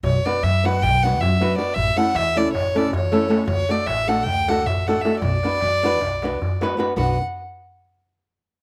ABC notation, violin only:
X:1
M:9/8
L:1/8
Q:3/8=104
K:Bm
V:1 name="Violin"
c d e f g f e2 d | e f e d c d c3 | c d e f g f e f e | d6- d z2 |
f z8 |]